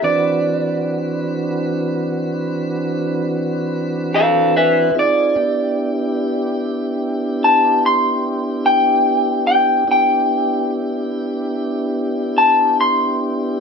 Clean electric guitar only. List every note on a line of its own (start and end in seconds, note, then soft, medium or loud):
0.04 1.63 D5 medium
4.14 4.54 A4 medium
4.14 4.54 F5 medium
4.57 4.93 B4 medium
4.57 4.95 E5 medium
4.99 6.57 D5 medium
7.44 7.83 A5 medium
7.86 8.64 C6 medium
8.66 9.45 G5 medium
9.47 9.87 G5 medium
9.91 10.70 G5 medium
12.38 12.76 A5 medium
12.81 13.58 C6 medium